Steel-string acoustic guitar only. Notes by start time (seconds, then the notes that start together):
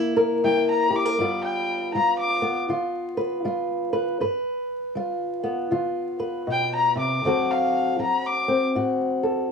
Already playing: G2 A#3 E4 A#4
0.17 A#4
0.44 G3 E4
0.90 G4
1.05 A#4
1.19 G2 G3 B3 F4 B4
1.95 G3 F4
2.42 B3
2.69 D3 F4
3.17 B4
3.45 G3 F4
3.93 B4
4.20 G2 B4
4.95 G3 F4
5.43 B3
5.71 D3 F4
6.19 B4
6.47 B2
6.95 C3
7.25 D3 F#3 C4 F#4 A4
7.99 F#3 F#4
8.48 C4
8.75 A2 F#4
9.23 A4